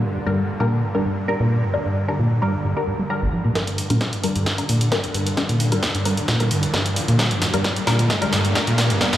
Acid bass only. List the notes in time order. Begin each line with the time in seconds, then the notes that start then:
0.04 G2
0.14 F2
0.27 G2
0.49 G#2
0.60 A#2
0.83 G2
0.95 F2
1.05 G2
1.28 G#2
1.40 A#2
1.63 G2
1.74 F2
1.85 G2
2.08 G#2
2.19 A#2
2.42 G2
2.54 F2
2.64 G2
2.87 G2
2.99 G3
3.22 G1
3.33 F3
3.45 A#2
3.55 G2
3.78 G#2
3.90 A#2
4.13 G2
4.24 F2
4.36 G2
4.58 G#2
4.69 A#2
4.92 G2
5.04 F2
5.14 G2
5.37 G#2
5.49 A#2
5.72 G2
5.83 F2
5.95 G2
6.17 G#2
6.28 A#2
6.51 G2
6.63 F2
6.74 G2
6.96 G#2
7.08 A#2
7.31 G2
7.42 F2
7.54 G2
7.76 G#2
7.87 A#2
8.10 G2
8.22 F2
8.33 G2
8.55 G#2
8.67 A#2
8.90 G2
9.01 F2
9.13 G2